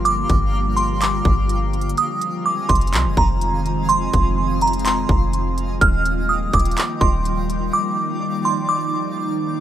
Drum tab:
HH |x-----------x-----------------------x-----------x-----------------------x-----------x---x---x---|x-----------x-----------------------x--x--x--x--x-----------------------x-----------x-----------|x-----------x-----------------------x--x--x--x--x-----------------------x-----------x-----------|x-----------x-----------------------x--x--x--x--x-----------------------x-----------x-----------|
CP |------------------------------------------------x-----------------------------------------------|------------------------------------------------x-----------------------------------------------|------------------------------------------------x-----------------------------------------------|------------------------------------------------x-----------------------------------------------|
BD |------------o-----------------------------------------------o-----------------------------------|------------------------------------o-----------------------o-----------------------------------|------------o-----------------------------------------------o-----------------------------------|o-----------------------------------o-----------------------o-----------------------------------|

HH |------------------------------------------------------------------------------------------------|
CP |------------------------------------------------------------------------------------------------|
BD |------------------------------------------------------------------------------------------------|